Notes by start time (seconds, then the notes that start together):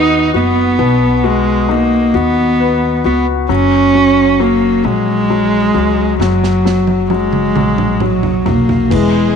Already playing: D#2 B3 D#4 F#4
0.34 F#1 B3 F#4
0.79 B1 B2
1.24 G#3 F#4
1.69 A#3 D#4
2.14 D#2 B3 F#4
2.60 B3
3.04 C#2 B3 F#4
3.49 F#1 F#3 C#4
3.95 F#3
4.40 F#3 A#3
4.84 A#1 F#3 G#3
5.30 F#3
5.74 C#2 F#3
6.20 F#1 F#3, snare
6.44 snare
6.65 F#3, snare
6.87 high tom
7.10 F#3 G#3, high tom
7.33 mid tom
7.56 A#1 F#3, mid tom
7.78 mid tom
8.00 F#3, mid tom
8.23 floor tom
8.46 B1 F#3 A#3, floor tom
8.69 floor tom
8.90 E1 B2 E3 G#3 G#4, kick, crash